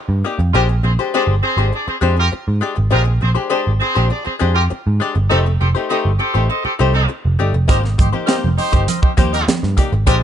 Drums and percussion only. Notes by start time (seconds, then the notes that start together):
7.69 kick, closed hi-hat, low conga
7.85 snare
7.99 kick, closed hi-hat, muted conga, high conga
8.29 snare, closed hi-hat, muted conga
8.44 high conga
8.58 open hi-hat, muted conga
8.73 kick, closed hi-hat, low conga
8.88 closed hi-hat, muted conga, high conga
9.03 kick
9.18 kick, closed hi-hat, muted conga, high conga
9.34 snare, closed hi-hat
9.48 snare, closed hi-hat, muted conga, high conga
9.63 snare
9.78 kick, closed hi-hat, muted conga, low conga
10.07 kick, closed hi-hat, muted conga, low conga